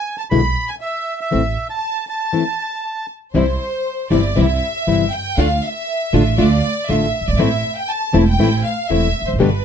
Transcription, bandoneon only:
0.00 0.16 G#5 medium
0.18 0.24 A5 medium
0.30 0.70 B5 medium
0.69 0.75 G#5 medium
0.81 1.20 E5 medium
1.21 1.67 E5 medium
1.70 2.05 A5 medium
2.09 3.06 A5 medium

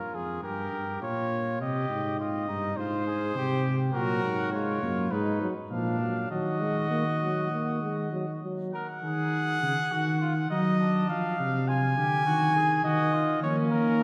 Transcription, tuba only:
0.13 0.42 F2 medium
0.42 0.72 G2 medium
0.72 1.01 G2 medium
1.02 1.62 A#2 medium
1.60 1.89 C3 medium
1.89 2.50 G#2 medium
2.48 2.77 G2 medium
2.77 3.34 G#2 medium
3.35 3.93 C3 medium
3.94 4.23 A#2 medium
4.24 4.81 G#2 medium
4.83 5.11 F#2 medium
5.12 5.49 G#2 medium
5.71 6.27 A#2 medium
6.31 8.39 D#3 medium
9.03 9.58 D#3 medium
9.63 9.76 C#3 medium
9.92 10.50 D#3 loud
10.51 11.08 F#3 loud
11.10 11.38 F3 medium
11.39 11.96 C3 medium
11.97 12.28 D3 medium
12.27 12.84 D#3 medium
12.85 13.42 D#3 loud
13.43 13.72 F3 medium
13.73 14.03 D#3 medium

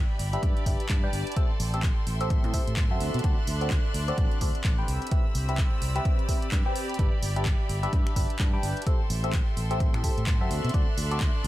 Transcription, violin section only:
0.00 1.35 G4 medium
0.00 1.35 E5 medium
0.00 1.35 B5 medium
1.37 2.99 A4 medium
1.37 2.99 G5 medium
1.37 4.85 C6 medium
3.01 4.86 D5 medium
3.01 4.86 F#6 loud
4.88 6.97 C4 medium
4.88 8.82 B5 medium
4.88 6.97 E6 loud
6.99 8.85 G4 medium
6.99 8.85 E5 medium
8.86 10.49 A4 medium
8.86 10.49 G5 medium
8.86 11.47 C6 medium
10.51 11.47 D5 medium
10.51 11.47 F#6 medium

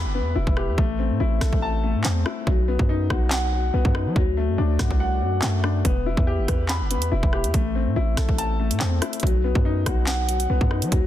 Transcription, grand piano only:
0.00 0.13 B3 medium
0.00 0.34 E4 medium
0.00 0.55 G4 medium
0.00 0.78 B4 medium
0.00 0.78 B5 medium
0.15 0.78 B3 medium
0.35 0.78 E4 medium
0.57 0.78 G4 medium
0.78 1.82 A3 medium
0.99 2.03 C4 medium
1.20 2.24 E4 medium
1.41 2.47 A4 medium
1.62 2.47 A5 loud
1.83 2.47 A3 medium
2.04 2.47 C4 medium
2.26 2.47 E4 medium
2.47 3.51 F#3 medium
2.68 3.72 B3 medium
2.89 3.93 D#4 medium
3.10 4.16 F#4 medium
3.31 4.16 F#5 loud
3.52 4.14 F#3 medium
3.74 4.16 B3 medium
3.95 4.16 D#4 medium
4.16 5.20 F#3 loud
4.37 5.41 A3 medium
4.58 5.62 D4 medium
4.79 5.85 F#4 medium
5.00 5.85 F#5 medium
5.21 5.85 F#3 medium
5.43 5.85 A3 medium
5.64 5.85 D4 medium
5.85 6.89 B3 medium
6.06 7.10 E4 medium
6.27 7.31 G4 medium
6.48 7.54 B4 medium
6.69 7.54 B5 medium
6.91 7.54 B3 medium
7.12 7.54 E4 medium
7.33 7.54 G4 medium
7.54 8.58 A3 medium
7.75 8.79 C4 medium
7.96 9.00 E4 medium
8.17 9.23 A4 medium
8.38 9.23 A5 medium
8.60 9.23 A3 medium
8.80 9.23 C4 medium
9.02 9.23 E4 medium
9.23 10.27 F#3 medium
9.44 10.48 B3 medium
9.65 10.69 D#4 medium
9.86 10.92 F#4 medium
10.07 10.92 F#5 loud
10.28 10.90 F#3 medium
10.50 10.92 B3 medium
10.71 10.92 D#4 medium
10.92 11.07 F#3 loud

